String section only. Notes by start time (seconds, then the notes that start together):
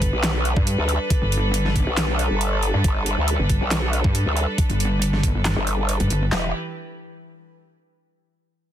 Already playing: G3 D4 A4 B4
6.32 E3 E4 G4 B4